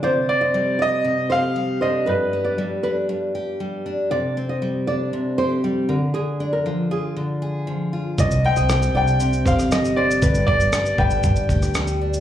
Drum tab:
SH |----------------|----------------|----------------|----------------|
SD |----------------|----------------|----------------|----------------|
BD |----------------|----------------|----------------|----------------|

SH |xx-xxx-xxxxxxx-x|xx-xxx-xxxxxxx-x|
SD |----r------rr---|----r------rr---|
BD |o---------o-----|o-o---o-o-o-----|